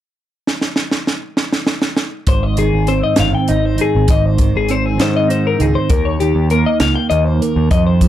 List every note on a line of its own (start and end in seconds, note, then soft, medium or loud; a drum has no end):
0.47 snare medium
0.61 snare medium
0.76 snare medium
0.91 snare medium
1.07 snare medium
1.37 snare medium
1.52 snare medium
1.67 snare medium
1.82 snare medium
1.97 snare medium
2.27 2.70 G#1 medium
2.27 4.08 G#2 medium
2.27 2.43 C5 medium
2.27 kick loud
2.27 closed hi-hat medium
2.43 2.58 D#5 medium
2.57 3.17 D#3 medium
2.57 2.88 G#4 medium
2.57 closed hi-hat medium
2.74 3.01 G#1 medium
2.87 4.05 C4 medium
2.87 3.03 C5 medium
2.87 closed hi-hat medium
3.04 3.18 D#5 medium
3.16 3.33 G1 medium
3.16 3.77 D#3 medium
3.16 3.34 F5 medium
3.16 snare loud
3.16 closed hi-hat medium
3.35 3.49 G5 medium
3.48 3.77 G#1 medium
3.48 5.28 D#4 medium
3.48 3.66 D#5 medium
3.48 closed hi-hat medium
3.66 3.80 C5 medium
3.78 4.38 D#3 soft
3.78 4.10 G#4 medium
3.78 closed hi-hat medium
3.95 4.08 G#1 medium
4.08 4.51 G#1 medium
4.08 5.90 G#2 medium
4.08 4.26 D#5 medium
4.08 kick loud
4.08 closed hi-hat medium
4.26 4.55 C5 medium
4.38 4.97 D#3 medium
4.38 kick medium
4.38 closed hi-hat medium
4.56 4.97 G#1 medium
4.56 4.71 G#4 medium
4.69 5.87 C4 medium
4.69 4.86 C5 medium
4.69 closed hi-hat medium
4.86 5.00 G#4 medium
4.98 5.56 G#2 medium
4.98 5.57 D#3 medium
4.98 5.16 C5 medium
4.98 snare loud
4.98 closed hi-hat medium
5.17 5.31 D#5 medium
5.28 7.76 D#4 medium
5.28 5.45 C5 medium
5.28 closed hi-hat medium
5.47 5.62 A#4 medium
5.59 5.74 C#2 medium
5.59 6.20 D#3 medium
5.59 5.76 G#4 medium
5.59 closed hi-hat medium
5.75 5.90 C5 medium
5.89 7.41 D#2 medium
5.89 6.33 D#2 medium
5.89 6.05 A#4 medium
5.89 kick loud
5.89 closed hi-hat medium
6.05 6.20 C#5 medium
6.20 8.02 D#3 medium
6.20 6.51 G4 medium
6.20 closed hi-hat medium
6.35 6.64 D#2 medium
6.50 7.69 A#3 medium
6.50 6.66 A#4 medium
6.50 closed hi-hat medium
6.66 6.80 D#5 medium
6.80 6.95 C#2 medium
6.80 6.95 F5 medium
6.80 snare loud
6.80 closed hi-hat medium
6.96 7.09 G5 medium
7.10 7.39 D#2 medium
7.10 7.25 D#5 medium
7.10 closed hi-hat medium
7.25 7.42 C5 medium
7.42 7.72 D#2 medium
7.42 7.71 A#4 medium
7.42 closed hi-hat medium
7.56 7.70 D#2 medium
7.71 8.08 F2 medium
7.71 7.86 D#5 medium
7.71 kick loud
7.71 closed hi-hat medium
7.87 8.08 C5 medium
8.01 8.08 F3 medium
8.01 kick medium
8.01 closed hi-hat medium